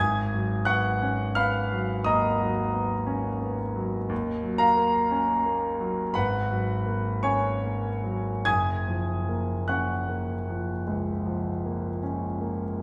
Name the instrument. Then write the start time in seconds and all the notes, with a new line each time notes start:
grand piano
Already playing: G#1 G#5 D#6 G#6
0.33 F#3
0.65 B3 F#5 C#6 F#6
1.02 C#4
1.35 B3 F5 B5 F6
1.72 F#3
2.04 D#2 D#5 A#5 D#6
2.41 F#3
2.74 B3
3.07 C#4
3.40 B3
3.76 F#3
4.09 D#2
4.43 F#3
4.58 A#4 F5 A#5
4.77 A#3
5.11 C#4
5.46 A#3
5.80 F#3
6.14 G#1 B4 F#5 B5
6.51 F#3
6.86 A#3
7.23 C#4 C#5 G#5 C#6
7.64 A#3
8.04 F#3
8.45 F#1 G#5 D#6 G#6
8.88 F3
9.29 A#3
9.68 C#4 F#5 C#6 F#6
10.09 A#3
10.49 F3
10.87 C#2
11.26 F3
11.65 A#3
12.03 C#4
12.41 A#3